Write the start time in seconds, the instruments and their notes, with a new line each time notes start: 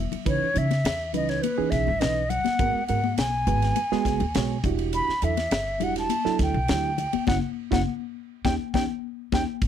Already playing: reed electric piano E5
0.12 muted upright bass stroke, ride, low conga
0.26 upright bass C#2, reed electric piano E3 C#4 D#4 B4, flute C#5, kick, hi-hat pedal, ride
0.42 muted upright bass stroke
0.54 upright bass C#3, reed electric piano E3 C#4 D#4 C#5, flute E5, hi-hat pedal, ride
0.71 reed electric piano D#4 C#5, snare, ride, high conga
0.84 upright bass E2, snare, hi-hat pedal, ride
1.13 upright bass C#2, reed electric piano E3 C#4 D#4 B4, flute D#5, hi-hat pedal, ride, low conga
1.29 flute C#5, snare, ride
1.42 flute B4, hi-hat pedal, ride, high conga
1.58 reed electric piano E3 C#4 D#4 G#4, muted upright bass stroke
1.70 upright bass B1, flute E5, kick, snare, hi-hat pedal, ride
1.87 upright bass G#1, low conga
2.00 upright bass B1, reed electric piano E3 C#4 D#4 B4, flute D#5, snare, hi-hat pedal, ride
2.30 reed electric piano D#4 C#5, flute F#5, hi-hat pedal, ride, low conga
2.45 muted upright bass stroke, snare, ride, high conga
2.59 upright bass G#1, reed electric piano G#3 B3 F#4 A#4, kick, hi-hat pedal, ride
2.75 muted upright bass stroke
2.87 upright bass G#2, reed electric piano G#3 B3 F#4 A#4, flute F#5, hi-hat pedal, ride
3.04 reed electric piano F#4 G#4, high conga
3.18 upright bass B1, flute G#5, snare, hi-hat pedal, ride
3.47 upright bass G#1, reed electric piano G#3 B3 F#4 B4, hi-hat pedal, ride
3.62 snare, ride
3.76 hi-hat pedal, ride, high conga
3.92 reed electric piano G#3 B3 F#4 G#4, muted upright bass stroke, snare
4.05 upright bass F#1, kick, snare, hi-hat pedal, ride
4.20 upright bass D#2, ride, low conga
4.34 upright bass B1, reed electric piano G#3 B3 F#4 C#5, snare, hi-hat pedal, ride
4.63 upright bass E1, reed electric piano D4 E4 F#4 G4, kick, hi-hat pedal, ride, low conga
4.79 ride
4.93 flute B5, hi-hat pedal, ride
5.09 muted upright bass stroke, snare
5.22 upright bass E2, reed electric piano F#3 D4 E4 A4, flute E5, hi-hat pedal, ride
5.37 reed electric piano E4 G4, snare, ride, high conga
5.51 upright bass G1, snare, hi-hat pedal, ride
5.80 upright bass E1, reed electric piano D4 E4 F#4 G4, flute F#5, hi-hat pedal, ride, low conga
5.96 flute A5, snare, ride
6.09 hi-hat pedal, ride, high conga
6.25 reed electric piano F#3 D4 E4 A4, muted upright bass stroke, snare
6.39 upright bass D2, flute G5, kick, snare, hi-hat pedal, ride
6.54 upright bass B1, low conga
6.68 upright bass D2, reed electric piano F#3 D4 E4 G4, snare, hi-hat pedal, ride
6.98 reed electric piano E4 G4, hi-hat pedal, ride, low conga
7.13 muted upright bass stroke, ride, high conga
7.27 upright bass F#1, reed electric piano C#4 E4 F#4, flute F#5, kick, snare, high conga
7.71 upright bass F#1, reed electric piano C#4 E4 F#4, flute F#5, kick, snare, high conga
8.45 upright bass D#2, reed electric piano C#4 D#4 G4, flute G5, kick, snare, high conga
8.74 upright bass D#2, reed electric piano C#4 D#4 G4, flute G5, kick, snare, high conga
9.32 upright bass D#2, reed electric piano C#4 D#4 G4, flute G5, kick, snare, high conga
9.62 upright bass G#1, kick, hi-hat pedal, ride